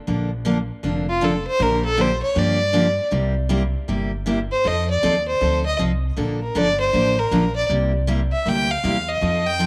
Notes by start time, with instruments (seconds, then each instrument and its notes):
0.07 upright bass A#1, steel-string acoustic guitar D3 F3 A#3 D4 A4
0.45 steel-string acoustic guitar D3 F3 A#3 D4 A4
0.83 upright bass F1, steel-string acoustic guitar D3 F3 A#3 D4 A4
1.09 fiddle F4
1.21 steel-string acoustic guitar D3 F3 A#3 D4 A4, fiddle A4
1.47 fiddle C5
1.59 upright bass A#1, steel-string acoustic guitar D3 F3 A#3 D4 G4, fiddle A#4
1.85 fiddle A4
1.97 steel-string acoustic guitar D3 F3 A#3 D4 G4, fiddle C5
2.23 fiddle C#5
2.35 upright bass G2, steel-string acoustic guitar D3 F3 A#3 D4 G4, fiddle D5
2.73 steel-string acoustic guitar D3 F3 A#3 D4 G4
3.11 upright bass C2, steel-string acoustic guitar C3 G3 A#3 E4 G4
3.49 steel-string acoustic guitar C3 G3 A#3 E4 G4
3.88 upright bass G1, steel-string acoustic guitar C3 G3 A#3 E4 G4
4.26 steel-string acoustic guitar C3 G3 A#3 E4 G4
4.52 fiddle C5
4.64 upright bass F2, steel-string acoustic guitar F3 C4 D#4 A4, fiddle D#5
4.90 fiddle D5
5.03 upright bass D#2, steel-string acoustic guitar F3 C4 D#4 A4
5.28 fiddle C5
5.41 upright bass D2, steel-string acoustic guitar F3 C4 D#4 A4
5.66 fiddle D#5
5.79 upright bass C2, steel-string acoustic guitar F3 C4 D#4 A4
6.17 upright bass A#1, steel-string acoustic guitar D3 F3 A#3 D4 A4
6.42 fiddle A#4
6.55 upright bass G1, steel-string acoustic guitar D3 F3 A#3 D4 A4, fiddle D5
6.80 fiddle C5
6.93 upright bass A1, steel-string acoustic guitar D3 F3 A#3 D4 A4
7.19 fiddle A#4
7.31 upright bass A#1, steel-string acoustic guitar D3 F3 A#3 D4 A4
7.56 fiddle D5
7.69 upright bass C2, steel-string acoustic guitar C3 G3 A#3 E4 G4
8.07 steel-string acoustic guitar C3 G3 A#3 E4 G4
8.32 fiddle E5
8.46 upright bass D2, steel-string acoustic guitar C3 G3 A#3 E4 G4, fiddle G5
8.71 fiddle F5
8.84 upright bass E2, steel-string acoustic guitar C3 G3 A#3 E4 G4
9.09 fiddle D#5
9.21 upright bass F2, steel-string acoustic guitar F3 C4 D#4 A4
9.47 fiddle G5
9.59 steel-string acoustic guitar F3 C4 D#4 A4